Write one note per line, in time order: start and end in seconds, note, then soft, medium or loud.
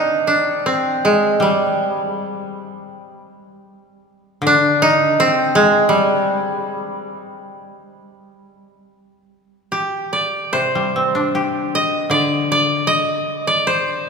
0.00 0.65 D3 soft
0.00 0.66 C4 medium
0.00 0.33 D#4 medium
0.27 2.70 D4 medium
0.66 3.26 C4 medium
1.05 1.48 G#3 medium
1.40 3.71 G3 medium
1.40 4.52 G3 medium
4.42 6.61 D3 medium
4.47 4.88 D4 medium
4.82 7.16 D#4 loud
5.20 7.80 C4 medium
5.55 5.95 G#3 medium
5.89 9.69 G3 medium
9.72 11.76 G4 medium
10.13 11.73 D5 medium
10.53 12.11 C3 medium
10.53 12.24 C5 medium
10.75 12.31 G3 soft
10.96 12.51 C4 soft
11.15 12.69 D4 soft
11.35 12.89 G4 soft
11.75 12.17 D#5 medium
12.10 14.09 D3 medium
12.10 12.51 D5 medium
12.52 12.93 D5 medium
12.87 13.53 D#5 loud
13.47 14.09 D5 medium
13.67 14.09 C5 medium